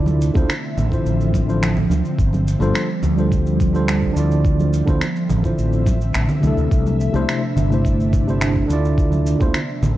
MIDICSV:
0, 0, Header, 1, 5, 480
1, 0, Start_track
1, 0, Key_signature, -1, "minor"
1, 0, Tempo, 566038
1, 1856, Time_signature, 4, 2, 24, 8
1, 8458, End_track
2, 0, Start_track
2, 0, Title_t, "Tine electric piano"
2, 0, Program_c, 0, 4
2, 0, Note_on_c, 0, 50, 93
2, 0, Note_on_c, 0, 62, 82
2, 0, Note_on_c, 0, 64, 84
2, 0, Note_on_c, 0, 65, 79
2, 0, Note_on_c, 0, 74, 94
2, 254, Note_off_c, 0, 50, 0
2, 261, Note_off_c, 0, 62, 0
2, 269, Note_off_c, 0, 64, 0
2, 276, Note_off_c, 0, 65, 0
2, 282, Note_off_c, 0, 74, 0
2, 284, Note_on_c, 0, 50, 94
2, 294, Note_on_c, 0, 62, 85
2, 299, Note_on_c, 0, 64, 76
2, 306, Note_on_c, 0, 65, 82
2, 314, Note_on_c, 0, 72, 104
2, 428, Note_off_c, 0, 50, 0
2, 433, Note_off_c, 0, 62, 0
2, 436, Note_off_c, 0, 64, 0
2, 440, Note_off_c, 0, 65, 0
2, 444, Note_off_c, 0, 72, 0
2, 763, Note_on_c, 0, 50, 81
2, 770, Note_on_c, 0, 62, 75
2, 777, Note_on_c, 0, 64, 76
2, 785, Note_on_c, 0, 65, 73
2, 794, Note_on_c, 0, 72, 92
2, 1221, Note_off_c, 0, 50, 0
2, 1225, Note_off_c, 0, 62, 0
2, 1228, Note_off_c, 0, 64, 0
2, 1232, Note_off_c, 0, 65, 0
2, 1237, Note_off_c, 0, 72, 0
2, 1238, Note_on_c, 0, 50, 83
2, 1251, Note_on_c, 0, 62, 70
2, 1257, Note_on_c, 0, 64, 72
2, 1264, Note_on_c, 0, 65, 73
2, 1270, Note_on_c, 0, 72, 89
2, 1472, Note_off_c, 0, 50, 0
2, 1478, Note_off_c, 0, 62, 0
2, 1481, Note_off_c, 0, 64, 0
2, 1484, Note_off_c, 0, 65, 0
2, 1487, Note_off_c, 0, 72, 0
2, 2198, Note_on_c, 0, 55, 88
2, 2206, Note_on_c, 0, 62, 87
2, 2214, Note_on_c, 0, 65, 88
2, 2220, Note_on_c, 0, 69, 86
2, 2225, Note_on_c, 0, 72, 99
2, 2431, Note_off_c, 0, 55, 0
2, 2435, Note_off_c, 0, 62, 0
2, 2439, Note_off_c, 0, 65, 0
2, 2443, Note_off_c, 0, 69, 0
2, 2445, Note_off_c, 0, 72, 0
2, 2683, Note_on_c, 0, 55, 83
2, 2694, Note_on_c, 0, 62, 69
2, 2696, Note_on_c, 0, 65, 75
2, 2707, Note_on_c, 0, 69, 71
2, 2712, Note_on_c, 0, 72, 85
2, 3141, Note_off_c, 0, 55, 0
2, 3147, Note_off_c, 0, 62, 0
2, 3148, Note_off_c, 0, 65, 0
2, 3153, Note_off_c, 0, 69, 0
2, 3156, Note_off_c, 0, 72, 0
2, 3159, Note_on_c, 0, 55, 90
2, 3167, Note_on_c, 0, 62, 74
2, 3175, Note_on_c, 0, 65, 83
2, 3179, Note_on_c, 0, 69, 83
2, 3187, Note_on_c, 0, 72, 99
2, 3497, Note_off_c, 0, 62, 0
2, 3498, Note_off_c, 0, 55, 0
2, 3498, Note_on_c, 0, 50, 95
2, 3506, Note_off_c, 0, 65, 0
2, 3507, Note_on_c, 0, 62, 82
2, 3508, Note_off_c, 0, 69, 0
2, 3512, Note_off_c, 0, 72, 0
2, 3527, Note_on_c, 0, 64, 86
2, 3540, Note_on_c, 0, 65, 83
2, 3558, Note_on_c, 0, 74, 102
2, 4090, Note_off_c, 0, 50, 0
2, 4095, Note_off_c, 0, 62, 0
2, 4105, Note_off_c, 0, 64, 0
2, 4111, Note_off_c, 0, 65, 0
2, 4118, Note_on_c, 0, 50, 93
2, 4121, Note_off_c, 0, 74, 0
2, 4126, Note_on_c, 0, 62, 83
2, 4135, Note_on_c, 0, 64, 80
2, 4143, Note_on_c, 0, 65, 82
2, 4152, Note_on_c, 0, 72, 101
2, 4266, Note_off_c, 0, 50, 0
2, 4269, Note_off_c, 0, 62, 0
2, 4274, Note_off_c, 0, 64, 0
2, 4278, Note_off_c, 0, 65, 0
2, 4283, Note_off_c, 0, 72, 0
2, 4600, Note_on_c, 0, 50, 83
2, 4608, Note_on_c, 0, 62, 73
2, 4618, Note_on_c, 0, 64, 72
2, 4623, Note_on_c, 0, 65, 74
2, 4632, Note_on_c, 0, 72, 84
2, 5060, Note_off_c, 0, 50, 0
2, 5064, Note_off_c, 0, 62, 0
2, 5069, Note_off_c, 0, 64, 0
2, 5072, Note_off_c, 0, 65, 0
2, 5076, Note_off_c, 0, 72, 0
2, 5429, Note_on_c, 0, 48, 85
2, 5443, Note_on_c, 0, 57, 80
2, 5457, Note_on_c, 0, 62, 82
2, 5474, Note_on_c, 0, 64, 76
2, 5488, Note_on_c, 0, 69, 93
2, 6016, Note_off_c, 0, 48, 0
2, 6023, Note_off_c, 0, 57, 0
2, 6030, Note_off_c, 0, 62, 0
2, 6038, Note_off_c, 0, 64, 0
2, 6041, Note_on_c, 0, 48, 87
2, 6045, Note_off_c, 0, 69, 0
2, 6051, Note_on_c, 0, 57, 82
2, 6053, Note_on_c, 0, 62, 84
2, 6065, Note_on_c, 0, 64, 83
2, 6069, Note_on_c, 0, 72, 105
2, 6273, Note_off_c, 0, 48, 0
2, 6278, Note_off_c, 0, 57, 0
2, 6279, Note_off_c, 0, 62, 0
2, 6285, Note_off_c, 0, 64, 0
2, 6287, Note_off_c, 0, 72, 0
2, 6527, Note_on_c, 0, 48, 79
2, 6533, Note_on_c, 0, 57, 72
2, 6541, Note_on_c, 0, 62, 74
2, 6548, Note_on_c, 0, 64, 72
2, 6560, Note_on_c, 0, 72, 80
2, 6984, Note_off_c, 0, 48, 0
2, 6987, Note_off_c, 0, 57, 0
2, 6991, Note_off_c, 0, 62, 0
2, 6994, Note_off_c, 0, 64, 0
2, 7000, Note_off_c, 0, 72, 0
2, 7010, Note_on_c, 0, 48, 91
2, 7016, Note_on_c, 0, 57, 78
2, 7020, Note_on_c, 0, 62, 79
2, 7031, Note_on_c, 0, 64, 76
2, 7038, Note_on_c, 0, 72, 91
2, 7341, Note_on_c, 0, 50, 99
2, 7344, Note_off_c, 0, 48, 0
2, 7346, Note_off_c, 0, 57, 0
2, 7348, Note_off_c, 0, 62, 0
2, 7354, Note_off_c, 0, 64, 0
2, 7357, Note_off_c, 0, 72, 0
2, 7359, Note_on_c, 0, 62, 88
2, 7376, Note_on_c, 0, 64, 79
2, 7388, Note_on_c, 0, 65, 88
2, 7403, Note_on_c, 0, 74, 105
2, 7932, Note_off_c, 0, 50, 0
2, 7941, Note_off_c, 0, 62, 0
2, 7949, Note_off_c, 0, 64, 0
2, 7956, Note_off_c, 0, 65, 0
2, 7960, Note_on_c, 0, 50, 90
2, 7963, Note_off_c, 0, 74, 0
2, 7968, Note_on_c, 0, 62, 78
2, 7976, Note_on_c, 0, 64, 79
2, 7984, Note_on_c, 0, 65, 78
2, 7990, Note_on_c, 0, 72, 101
2, 8107, Note_off_c, 0, 50, 0
2, 8111, Note_off_c, 0, 62, 0
2, 8115, Note_off_c, 0, 64, 0
2, 8119, Note_off_c, 0, 65, 0
2, 8122, Note_off_c, 0, 72, 0
2, 8458, End_track
3, 0, Start_track
3, 0, Title_t, "Ambient pad"
3, 0, Program_c, 1, 92
3, 0, Note_on_c, 1, 50, 90
3, 0, Note_on_c, 1, 53, 90
3, 0, Note_on_c, 1, 60, 81
3, 0, Note_on_c, 1, 76, 78
3, 1834, Note_off_c, 1, 53, 0
3, 1836, Note_off_c, 1, 50, 0
3, 1836, Note_off_c, 1, 76, 0
3, 1854, Note_on_c, 1, 55, 88
3, 1857, Note_on_c, 1, 53, 101
3, 3741, Note_off_c, 1, 60, 0
3, 3756, Note_off_c, 1, 55, 0
3, 3783, Note_on_c, 1, 76, 82
3, 3786, Note_on_c, 1, 50, 91
3, 3790, Note_on_c, 1, 60, 77
3, 5663, Note_off_c, 1, 53, 0
3, 5682, Note_off_c, 1, 50, 0
3, 5684, Note_off_c, 1, 60, 0
3, 5704, Note_on_c, 1, 57, 81
3, 5708, Note_on_c, 1, 62, 80
3, 5710, Note_on_c, 1, 48, 85
3, 7601, Note_off_c, 1, 57, 0
3, 7603, Note_off_c, 1, 62, 0
3, 7604, Note_off_c, 1, 48, 0
3, 7620, Note_on_c, 1, 50, 90
3, 7622, Note_on_c, 1, 60, 82
3, 7628, Note_on_c, 1, 53, 93
3, 8458, Note_off_c, 1, 50, 0
3, 8458, Note_off_c, 1, 53, 0
3, 8458, Note_off_c, 1, 60, 0
3, 8458, Note_off_c, 1, 76, 0
3, 8458, End_track
4, 0, Start_track
4, 0, Title_t, "Fretless electric bass"
4, 0, Program_c, 2, 35
4, 0, Note_on_c, 2, 38, 94
4, 249, Note_off_c, 2, 38, 0
4, 299, Note_on_c, 2, 38, 100
4, 385, Note_off_c, 2, 38, 0
4, 654, Note_on_c, 2, 33, 90
4, 833, Note_off_c, 2, 33, 0
4, 889, Note_on_c, 2, 33, 78
4, 1563, Note_off_c, 2, 33, 0
4, 1607, Note_on_c, 2, 38, 78
4, 1702, Note_off_c, 2, 38, 0
4, 1854, Note_on_c, 2, 31, 101
4, 2166, Note_off_c, 2, 31, 0
4, 2204, Note_on_c, 2, 31, 107
4, 2297, Note_off_c, 2, 31, 0
4, 2566, Note_on_c, 2, 38, 93
4, 3481, Note_off_c, 2, 38, 0
4, 3528, Note_on_c, 2, 38, 94
4, 4083, Note_off_c, 2, 38, 0
4, 4134, Note_on_c, 2, 38, 106
4, 4222, Note_off_c, 2, 38, 0
4, 4489, Note_on_c, 2, 33, 88
4, 4670, Note_off_c, 2, 33, 0
4, 4735, Note_on_c, 2, 33, 80
4, 5209, Note_off_c, 2, 33, 0
4, 5214, Note_on_c, 2, 33, 86
4, 5305, Note_off_c, 2, 33, 0
4, 5454, Note_on_c, 2, 36, 91
4, 5545, Note_off_c, 2, 36, 0
4, 5572, Note_on_c, 2, 38, 89
4, 5661, Note_off_c, 2, 38, 0
4, 5691, Note_on_c, 2, 36, 102
4, 6004, Note_off_c, 2, 36, 0
4, 6051, Note_on_c, 2, 36, 98
4, 6141, Note_off_c, 2, 36, 0
4, 6411, Note_on_c, 2, 31, 88
4, 7324, Note_off_c, 2, 31, 0
4, 7372, Note_on_c, 2, 38, 94
4, 7925, Note_off_c, 2, 38, 0
4, 7975, Note_on_c, 2, 38, 109
4, 8063, Note_off_c, 2, 38, 0
4, 8328, Note_on_c, 2, 33, 91
4, 8458, Note_off_c, 2, 33, 0
4, 8458, End_track
5, 0, Start_track
5, 0, Title_t, "Drums"
5, 52, Note_on_c, 9, 64, 81
5, 61, Note_on_c, 9, 69, 31
5, 137, Note_off_c, 9, 64, 0
5, 146, Note_off_c, 9, 69, 0
5, 180, Note_on_c, 9, 69, 79
5, 265, Note_off_c, 9, 69, 0
5, 293, Note_on_c, 9, 63, 85
5, 300, Note_on_c, 9, 36, 106
5, 308, Note_on_c, 9, 69, 33
5, 377, Note_off_c, 9, 63, 0
5, 384, Note_off_c, 9, 36, 0
5, 393, Note_off_c, 9, 69, 0
5, 422, Note_on_c, 9, 26, 103
5, 423, Note_on_c, 9, 69, 43
5, 506, Note_off_c, 9, 26, 0
5, 508, Note_off_c, 9, 69, 0
5, 658, Note_on_c, 9, 64, 73
5, 660, Note_on_c, 9, 69, 80
5, 743, Note_off_c, 9, 64, 0
5, 745, Note_off_c, 9, 69, 0
5, 779, Note_on_c, 9, 36, 67
5, 785, Note_on_c, 9, 69, 33
5, 864, Note_off_c, 9, 36, 0
5, 869, Note_off_c, 9, 69, 0
5, 899, Note_on_c, 9, 69, 42
5, 984, Note_off_c, 9, 69, 0
5, 1023, Note_on_c, 9, 69, 33
5, 1108, Note_off_c, 9, 69, 0
5, 1135, Note_on_c, 9, 64, 93
5, 1136, Note_on_c, 9, 36, 101
5, 1140, Note_on_c, 9, 69, 85
5, 1220, Note_off_c, 9, 64, 0
5, 1221, Note_off_c, 9, 36, 0
5, 1225, Note_off_c, 9, 69, 0
5, 1265, Note_on_c, 9, 69, 34
5, 1349, Note_off_c, 9, 69, 0
5, 1380, Note_on_c, 9, 26, 104
5, 1382, Note_on_c, 9, 69, 44
5, 1465, Note_off_c, 9, 26, 0
5, 1467, Note_off_c, 9, 69, 0
5, 1500, Note_on_c, 9, 64, 85
5, 1584, Note_off_c, 9, 64, 0
5, 1612, Note_on_c, 9, 64, 74
5, 1619, Note_off_c, 9, 64, 0
5, 1619, Note_on_c, 9, 64, 59
5, 1620, Note_on_c, 9, 69, 75
5, 1704, Note_off_c, 9, 64, 0
5, 1705, Note_off_c, 9, 69, 0
5, 1739, Note_on_c, 9, 69, 36
5, 1823, Note_off_c, 9, 69, 0
5, 1853, Note_on_c, 9, 36, 114
5, 1858, Note_on_c, 9, 69, 49
5, 1938, Note_off_c, 9, 36, 0
5, 1942, Note_off_c, 9, 69, 0
5, 1977, Note_on_c, 9, 64, 75
5, 1983, Note_on_c, 9, 69, 31
5, 2061, Note_off_c, 9, 64, 0
5, 2067, Note_off_c, 9, 69, 0
5, 2099, Note_on_c, 9, 69, 84
5, 2184, Note_off_c, 9, 69, 0
5, 2214, Note_on_c, 9, 63, 88
5, 2220, Note_on_c, 9, 69, 35
5, 2298, Note_off_c, 9, 63, 0
5, 2304, Note_off_c, 9, 69, 0
5, 2335, Note_on_c, 9, 26, 96
5, 2337, Note_on_c, 9, 69, 43
5, 2420, Note_off_c, 9, 26, 0
5, 2422, Note_off_c, 9, 69, 0
5, 2568, Note_on_c, 9, 64, 74
5, 2570, Note_on_c, 9, 69, 82
5, 2653, Note_off_c, 9, 64, 0
5, 2654, Note_off_c, 9, 69, 0
5, 2694, Note_on_c, 9, 69, 32
5, 2779, Note_off_c, 9, 69, 0
5, 2813, Note_on_c, 9, 36, 100
5, 2815, Note_on_c, 9, 69, 45
5, 2898, Note_off_c, 9, 36, 0
5, 2900, Note_off_c, 9, 69, 0
5, 2938, Note_on_c, 9, 69, 30
5, 3023, Note_off_c, 9, 69, 0
5, 3053, Note_on_c, 9, 36, 98
5, 3054, Note_on_c, 9, 69, 82
5, 3138, Note_off_c, 9, 36, 0
5, 3139, Note_off_c, 9, 69, 0
5, 3177, Note_on_c, 9, 69, 33
5, 3262, Note_off_c, 9, 69, 0
5, 3293, Note_on_c, 9, 26, 108
5, 3294, Note_on_c, 9, 69, 46
5, 3377, Note_off_c, 9, 26, 0
5, 3379, Note_off_c, 9, 69, 0
5, 3414, Note_on_c, 9, 36, 66
5, 3499, Note_off_c, 9, 36, 0
5, 3531, Note_on_c, 9, 69, 81
5, 3616, Note_off_c, 9, 69, 0
5, 3657, Note_on_c, 9, 69, 34
5, 3742, Note_off_c, 9, 69, 0
5, 3771, Note_on_c, 9, 36, 115
5, 3772, Note_on_c, 9, 69, 47
5, 3855, Note_off_c, 9, 36, 0
5, 3857, Note_off_c, 9, 69, 0
5, 3896, Note_on_c, 9, 64, 71
5, 3901, Note_on_c, 9, 69, 31
5, 3981, Note_off_c, 9, 64, 0
5, 3985, Note_off_c, 9, 69, 0
5, 4013, Note_on_c, 9, 69, 85
5, 4097, Note_off_c, 9, 69, 0
5, 4134, Note_on_c, 9, 63, 101
5, 4135, Note_on_c, 9, 36, 100
5, 4136, Note_on_c, 9, 69, 33
5, 4219, Note_off_c, 9, 36, 0
5, 4219, Note_off_c, 9, 63, 0
5, 4221, Note_off_c, 9, 69, 0
5, 4252, Note_on_c, 9, 26, 95
5, 4253, Note_on_c, 9, 69, 43
5, 4337, Note_off_c, 9, 26, 0
5, 4338, Note_off_c, 9, 69, 0
5, 4377, Note_on_c, 9, 69, 30
5, 4461, Note_off_c, 9, 69, 0
5, 4490, Note_on_c, 9, 64, 72
5, 4492, Note_on_c, 9, 69, 77
5, 4575, Note_off_c, 9, 64, 0
5, 4576, Note_off_c, 9, 69, 0
5, 4614, Note_on_c, 9, 36, 64
5, 4619, Note_on_c, 9, 69, 32
5, 4698, Note_off_c, 9, 36, 0
5, 4703, Note_off_c, 9, 69, 0
5, 4735, Note_on_c, 9, 69, 44
5, 4819, Note_off_c, 9, 69, 0
5, 4855, Note_on_c, 9, 69, 31
5, 4940, Note_off_c, 9, 69, 0
5, 4971, Note_on_c, 9, 64, 94
5, 4973, Note_on_c, 9, 36, 105
5, 4973, Note_on_c, 9, 69, 79
5, 5056, Note_off_c, 9, 64, 0
5, 5058, Note_off_c, 9, 36, 0
5, 5058, Note_off_c, 9, 69, 0
5, 5098, Note_on_c, 9, 69, 34
5, 5183, Note_off_c, 9, 69, 0
5, 5211, Note_on_c, 9, 26, 94
5, 5212, Note_on_c, 9, 69, 45
5, 5295, Note_off_c, 9, 26, 0
5, 5297, Note_off_c, 9, 69, 0
5, 5333, Note_on_c, 9, 64, 79
5, 5334, Note_on_c, 9, 69, 33
5, 5418, Note_off_c, 9, 64, 0
5, 5419, Note_off_c, 9, 69, 0
5, 5452, Note_on_c, 9, 64, 59
5, 5454, Note_on_c, 9, 69, 73
5, 5462, Note_off_c, 9, 64, 0
5, 5462, Note_on_c, 9, 64, 77
5, 5539, Note_off_c, 9, 69, 0
5, 5546, Note_off_c, 9, 64, 0
5, 5576, Note_on_c, 9, 69, 34
5, 5661, Note_off_c, 9, 69, 0
5, 5693, Note_on_c, 9, 36, 117
5, 5694, Note_on_c, 9, 69, 45
5, 5778, Note_off_c, 9, 36, 0
5, 5779, Note_off_c, 9, 69, 0
5, 5820, Note_on_c, 9, 69, 30
5, 5823, Note_on_c, 9, 64, 68
5, 5905, Note_off_c, 9, 69, 0
5, 5908, Note_off_c, 9, 64, 0
5, 5939, Note_on_c, 9, 69, 83
5, 6024, Note_off_c, 9, 69, 0
5, 6056, Note_on_c, 9, 63, 90
5, 6063, Note_on_c, 9, 69, 34
5, 6141, Note_off_c, 9, 63, 0
5, 6147, Note_off_c, 9, 69, 0
5, 6180, Note_on_c, 9, 26, 92
5, 6182, Note_on_c, 9, 69, 43
5, 6265, Note_off_c, 9, 26, 0
5, 6267, Note_off_c, 9, 69, 0
5, 6417, Note_on_c, 9, 64, 76
5, 6419, Note_on_c, 9, 69, 72
5, 6502, Note_off_c, 9, 64, 0
5, 6504, Note_off_c, 9, 69, 0
5, 6546, Note_on_c, 9, 69, 31
5, 6631, Note_off_c, 9, 69, 0
5, 6655, Note_on_c, 9, 36, 100
5, 6661, Note_on_c, 9, 69, 45
5, 6739, Note_off_c, 9, 36, 0
5, 6745, Note_off_c, 9, 69, 0
5, 6785, Note_on_c, 9, 69, 29
5, 6869, Note_off_c, 9, 69, 0
5, 6894, Note_on_c, 9, 36, 101
5, 6894, Note_on_c, 9, 69, 80
5, 6979, Note_off_c, 9, 36, 0
5, 6979, Note_off_c, 9, 69, 0
5, 7022, Note_on_c, 9, 69, 32
5, 7107, Note_off_c, 9, 69, 0
5, 7134, Note_on_c, 9, 26, 101
5, 7135, Note_on_c, 9, 69, 48
5, 7219, Note_off_c, 9, 26, 0
5, 7220, Note_off_c, 9, 69, 0
5, 7257, Note_on_c, 9, 36, 61
5, 7342, Note_off_c, 9, 36, 0
5, 7376, Note_on_c, 9, 69, 79
5, 7461, Note_off_c, 9, 69, 0
5, 7505, Note_on_c, 9, 69, 31
5, 7590, Note_off_c, 9, 69, 0
5, 7613, Note_on_c, 9, 36, 115
5, 7619, Note_on_c, 9, 69, 44
5, 7698, Note_off_c, 9, 36, 0
5, 7704, Note_off_c, 9, 69, 0
5, 7733, Note_on_c, 9, 64, 73
5, 7737, Note_on_c, 9, 69, 28
5, 7818, Note_off_c, 9, 64, 0
5, 7822, Note_off_c, 9, 69, 0
5, 7854, Note_on_c, 9, 69, 80
5, 7939, Note_off_c, 9, 69, 0
5, 7975, Note_on_c, 9, 63, 101
5, 7977, Note_on_c, 9, 36, 101
5, 7980, Note_on_c, 9, 69, 32
5, 8059, Note_off_c, 9, 63, 0
5, 8062, Note_off_c, 9, 36, 0
5, 8065, Note_off_c, 9, 69, 0
5, 8092, Note_on_c, 9, 26, 93
5, 8094, Note_on_c, 9, 69, 40
5, 8177, Note_off_c, 9, 26, 0
5, 8179, Note_off_c, 9, 69, 0
5, 8334, Note_on_c, 9, 64, 79
5, 8335, Note_on_c, 9, 69, 72
5, 8419, Note_off_c, 9, 64, 0
5, 8420, Note_off_c, 9, 69, 0
5, 8458, End_track
0, 0, End_of_file